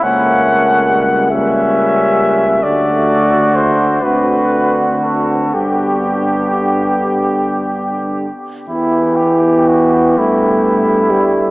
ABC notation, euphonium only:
X:1
M:6/8
L:1/8
Q:3/8=42
K:G
V:1 name="Euphonium" clef=bass
^A,3 G,3 | D,3 D,3 | D,4- D, z | [K:Em] E,3 A,2 G, |]